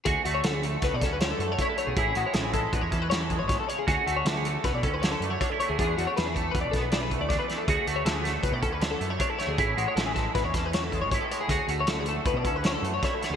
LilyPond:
<<
  \new Staff \with { instrumentName = "Clean electric guitar" } { \time 5/4 \key d \lydian \tempo 4 = 157 gis'8 fis'16 cis''16 a'16 gis'16 a'8 b'16 d''16 a'16 b'16 cis''16 a'8 cis''16 cis''16 a'16 cis''16 gis'16 | gis'8 fis'16 cis''16 a'16 gis'16 a'8 b'16 cis''16 a'16 b'16 cis''16 a'8 cis''16 cis''16 a'16 cis''16 gis'16 | gis'8 fis'16 cis''16 a'16 gis'16 a'8 b'16 d''16 a'16 b'16 cis''16 a'8 cis''16 cis''16 a'16 cis''16 gis'16 | gis'8 fis'16 cis''16 b'16 gis'16 a'8 b'16 d''16 a'16 b'16 d''16 b'8 d''16 d''16 b'16 d''16 a'16 |
gis'8 fis'16 cis''16 a'16 gis'16 a'8 b'16 d''16 a'16 b'16 cis''16 a'8 cis''16 cis''16 a'16 cis''16 gis'16 | gis'8 fis'16 cis''16 a'16 gis'16 a'8 b'16 cis''16 a'16 b'16 cis''16 a'8 cis''16 cis''16 a'16 cis''16 gis'16 | gis'8 fis'16 cis''16 a'16 gis'16 a'8 b'16 d''16 a'16 b'16 cis''16 a'8 cis''16 cis''16 a'16 cis''16 r16 | }
  \new Staff \with { instrumentName = "Clean electric guitar" } { \clef bass \time 5/4 \key d \lydian << { fis'8 a4 a4 cis'4 a8 e'8 a8 | e'8 gis4 gis4 cis'4 gis4. | fis'8 a4 a4 cis'4 a8 d'16 e'16 a8 | d'8 a4 a4 b4 a8 d'8 a8 |
fis'8 a4 a4 cis'4 a8 d'16 e'16 a8 | e'8 gis4 gis4 cis'4 gis8 e'8 gis8 | fis'8 a4 a4 cis'4 a8 e'8 a8 | } \\ { d,4 d4 a,4 d4 d,4 | a,4 e4 e,4 e4 b,8 cis8 | d,4 d4 a,4 d4 d,4 | e,4 e4 b,4 e4 e,4 |
d,4 d4 a,4 d4 d,4 | a,4 e4 e,4 e4 a,4 | d,4 d4 a,4 d4 d,4 | } >> }
  \new Staff \with { instrumentName = "Picked electric bass" } { \clef bass \time 5/4 \key d \lydian d,16 r16 d,8 d,4 cis,16 b,16 d,4 fis,8 r8. b,,16 | a,,8 a,,16 r16 a,,4 a,,16 e,16 e,4~ e,16 gis,,8 r8. | d,16 r16 d,8 d,4 cis,16 b,16 d,4 fis,8 r8. d,16 | e,8 e,16 r16 e,4 e,16 b,,16 b,,4~ b,,16 d,8 r8. |
d,16 r16 d,8 d,4 cis,16 b,16 d,4 fis,8 r8. d,16 | a,,8 a,,16 r16 a,,4 a,,16 e,16 e,4~ e,16 gis,,8 r8. | d,16 r16 d,8 d,4 cis,16 b,16 d,4 fis,8 r8. d,16 | }
  \new DrumStaff \with { instrumentName = "Drums" } \drummode { \time 5/4 <hh bd>8 hh8 <hh sn>8 hh8 <hh bd sn>8 <hh bd sn>8 <hh sn>8 hh8 <hh bd>8 hh8 | <hh bd>8 hh8 <hh sn>8 <hh bd>8 <hh bd>8 <hh bd>8 <hh sn>8 <hh bd>8 <hh bd sn>8 hh8 | <hh bd>8 hh8 <hh sn>8 hh8 <hh bd sn>8 <hh bd>8 <hh sn>8 hh8 <hh bd>8 hh8 | <hh bd>8 hh8 <hh sn>8 <hh bd>8 <hh bd>8 <hh bd sn>8 <hh sn>8 <hh bd>8 <hh bd sn>8 <hh sn>8 |
<hh bd>8 hh8 <hh sn>8 <hh sn>8 <hh bd>8 <hh bd>8 <hh sn>8 hh8 <hh bd>8 <hh sn>8 | <hh bd>8 hh8 <hh sn>8 <hh bd sn>8 <hh bd sn>8 <hh bd sn>8 <hh sn>8 <hh bd>8 <hh bd>8 hh8 | <hh bd>8 hh8 <hh sn>8 hh8 <hh bd>8 <hh bd>8 <hh sn>8 hh8 <hh bd sn>8 <hh sn>8 | }
>>